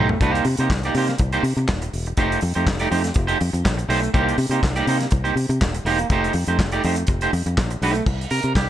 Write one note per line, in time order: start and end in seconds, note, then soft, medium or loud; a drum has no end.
0.00 0.14 B1 medium
0.00 0.17 A3 medium
0.00 0.10 D#4 medium
0.09 muted clean electric guitar stroke soft
0.09 floor tom medium
0.21 0.39 C2 loud
0.21 0.44 A#3 medium
0.21 0.44 D#4 medium
0.21 0.44 G4 medium
0.21 0.45 C5 medium
0.21 kick loud
0.21 closed hi-hat medium
0.35 closed hi-hat soft
0.45 0.55 C3 medium
0.45 open hi-hat medium
0.57 0.67 C3 medium
0.57 0.70 A#3 soft
0.57 0.71 D#4 medium
0.57 0.71 G4 medium
0.57 0.71 C5 medium
0.57 closed hi-hat soft
0.70 0.88 C2 loud
0.70 muted clean electric guitar stroke soft
0.70 kick loud
0.70 snare loud
0.70 clap medium
0.83 0.95 A#3 medium
0.83 0.96 D#4 medium
0.83 0.96 G4 medium
0.83 0.97 D5 medium
0.83 closed hi-hat soft
0.95 1.13 C3 medium
0.95 1.13 A#3 medium
0.95 1.09 D#4 medium
0.95 1.09 G4 medium
0.95 1.08 C5 medium
0.95 open hi-hat medium
1.08 muted clean electric guitar stroke medium
1.08 snare soft
1.08 closed hi-hat soft
1.18 1.38 C2 loud
1.18 muted clean electric guitar stroke soft
1.18 kick loud
1.18 closed hi-hat medium
1.32 1.44 A#3 medium
1.32 1.44 D#4 medium
1.32 1.45 G4 medium
1.32 1.45 C5 medium
1.32 closed hi-hat soft
1.43 1.53 C3 loud
1.43 muted clean electric guitar stroke soft
1.43 open hi-hat medium
1.57 1.65 C3 loud
1.57 muted clean electric guitar stroke soft
1.57 closed hi-hat soft
1.68 1.87 D#1 medium
1.68 muted clean electric guitar stroke soft
1.68 kick loud
1.68 snare loud
1.68 clap medium
1.82 muted clean electric guitar stroke medium
1.82 closed hi-hat soft
1.93 2.12 E1 medium
1.93 open hi-hat medium
2.06 muted clean electric guitar stroke soft
2.06 closed hi-hat soft
2.17 2.36 F1 medium
2.17 2.40 A3 medium
2.17 2.40 D#4 medium
2.17 2.41 G4 medium
2.17 2.41 C5 medium
2.17 kick loud
2.17 closed hi-hat medium
2.32 closed hi-hat soft
2.41 2.52 F2 loud
2.41 muted clean electric guitar stroke soft
2.41 open hi-hat medium
2.54 2.64 F2 medium
2.54 2.66 A3 soft
2.54 2.67 D#4 medium
2.54 2.67 G4 medium
2.54 2.67 C5 medium
2.54 closed hi-hat soft
2.67 2.85 F1 medium
2.67 kick loud
2.67 snare loud
2.67 clap medium
2.79 2.90 A3 medium
2.79 2.89 D#4 medium
2.79 2.90 G4 medium
2.79 2.91 D5 medium
2.79 closed hi-hat soft
2.91 3.10 F2 medium
2.91 3.08 A3 medium
2.91 3.04 D#4 medium
2.91 3.04 G4 medium
2.91 3.03 C5 medium
2.91 open hi-hat medium
3.04 muted clean electric guitar stroke soft
3.04 snare soft
3.04 closed hi-hat soft
3.14 3.34 F1 loud
3.14 muted clean electric guitar stroke soft
3.14 kick loud
3.14 closed hi-hat medium
3.27 3.38 A3 medium
3.27 3.39 D#4 medium
3.27 3.39 G4 medium
3.27 3.39 C5 medium
3.27 closed hi-hat soft
3.41 3.51 F2 loud
3.41 open hi-hat medium
3.53 3.62 F2 loud
3.53 muted clean electric guitar stroke soft
3.53 closed hi-hat medium
3.64 3.84 A#1 loud
3.64 muted clean electric guitar stroke soft
3.64 kick loud
3.64 snare loud
3.64 clap medium
3.78 muted clean electric guitar stroke medium
3.78 closed hi-hat soft
3.89 4.07 B1 medium
3.89 4.09 A3 medium
3.89 4.02 D#4 medium
3.89 4.01 G4 medium
3.89 4.01 C5 medium
3.89 open hi-hat medium
4.02 muted clean electric guitar stroke medium
4.02 closed hi-hat soft
4.14 4.33 C2 medium
4.14 4.37 A#3 medium
4.14 4.37 D#4 medium
4.14 4.37 G4 medium
4.14 4.37 C5 medium
4.14 kick loud
4.14 closed hi-hat medium
4.29 closed hi-hat soft
4.38 4.48 C3 loud
4.38 muted clean electric guitar stroke soft
4.38 open hi-hat medium
4.49 4.59 C3 medium
4.49 4.63 A#3 medium
4.49 4.63 D#4 medium
4.49 4.63 G4 medium
4.49 4.63 C5 medium
4.49 closed hi-hat soft
4.63 4.81 C2 medium
4.63 kick loud
4.63 snare loud
4.63 clap medium
4.76 4.86 A#3 medium
4.76 4.87 D#4 medium
4.76 4.87 G4 medium
4.76 4.88 D5 medium
4.76 closed hi-hat soft
4.87 5.06 C3 medium
4.87 5.05 A#3 medium
4.87 4.99 D#4 medium
4.87 4.99 G4 medium
4.87 4.98 C5 medium
4.87 open hi-hat medium
4.99 muted clean electric guitar stroke soft
4.99 snare soft
4.99 closed hi-hat medium
5.11 5.30 C2 medium
5.11 muted clean electric guitar stroke soft
5.11 kick loud
5.11 closed hi-hat medium
5.24 5.35 A#3 medium
5.24 5.35 D#4 medium
5.24 5.36 G4 medium
5.24 5.36 C5 medium
5.24 closed hi-hat soft
5.36 5.46 C3 medium
5.36 muted clean electric guitar stroke soft
5.36 open hi-hat medium
5.49 5.58 C3 medium
5.49 muted clean electric guitar stroke soft
5.49 closed hi-hat soft
5.61 5.80 D#1 medium
5.61 muted clean electric guitar stroke soft
5.61 kick loud
5.61 snare loud
5.61 clap medium
5.74 muted clean electric guitar stroke soft
5.74 closed hi-hat soft
5.85 6.04 E1 medium
5.85 6.06 A#3 medium
5.85 6.00 D#4 medium
5.85 6.00 G4 medium
5.85 5.99 C5 loud
5.85 open hi-hat medium
5.99 muted clean electric guitar stroke soft
5.99 closed hi-hat soft
6.10 6.28 F1 loud
6.10 6.34 A3 medium
6.10 6.34 D#4 medium
6.10 6.34 G4 medium
6.10 6.34 C5 medium
6.10 kick loud
6.10 closed hi-hat medium
6.24 closed hi-hat soft
6.33 6.44 F2 loud
6.33 muted clean electric guitar stroke soft
6.33 open hi-hat medium
6.47 6.56 F2 medium
6.47 6.58 A3 soft
6.47 6.58 D#4 medium
6.47 6.59 G4 medium
6.47 6.59 C5 medium
6.47 closed hi-hat soft
6.59 6.78 F1 loud
6.59 kick loud
6.59 snare loud
6.59 clap medium
6.72 6.83 A3 medium
6.72 6.83 D#4 medium
6.72 6.84 G4 medium
6.72 6.85 D5 medium
6.72 closed hi-hat soft
6.83 7.03 F2 loud
6.83 7.02 A3 medium
6.83 6.97 D#4 medium
6.83 6.97 G4 medium
6.83 6.97 C5 medium
6.83 open hi-hat medium
6.96 muted clean electric guitar stroke soft
6.96 closed hi-hat soft
7.07 7.26 F1 medium
7.07 muted clean electric guitar stroke soft
7.07 kick loud
7.07 closed hi-hat medium
7.21 7.32 A3 medium
7.21 7.32 D#4 medium
7.21 7.32 G4 medium
7.21 7.32 C5 medium
7.21 closed hi-hat soft
7.33 7.43 F2 medium
7.33 open hi-hat medium
7.46 7.55 F2 loud
7.46 muted clean electric guitar stroke soft
7.46 closed hi-hat soft
7.57 7.76 A#1 loud
7.57 muted clean electric guitar stroke soft
7.57 kick loud
7.57 snare loud
7.57 clap loud
7.70 muted clean electric guitar stroke medium
7.70 closed hi-hat soft
7.82 8.00 B1 medium
7.82 8.03 A3 medium
7.82 7.95 D#4 loud
7.82 7.94 G4 medium
7.82 7.94 C5 medium
7.82 open hi-hat medium
7.95 muted clean electric guitar stroke soft
7.95 closed hi-hat soft
8.06 8.25 C2 loud
8.06 kick loud
8.06 crash medium
8.21 closed hi-hat soft
8.30 8.41 C3 medium
8.30 8.54 A#4 loud
8.30 open hi-hat medium
8.43 8.53 C3 medium
8.43 closed hi-hat soft
8.55 8.69 C2 medium
8.55 8.69 G4 medium
8.55 kick loud
8.55 snare loud
8.55 clap medium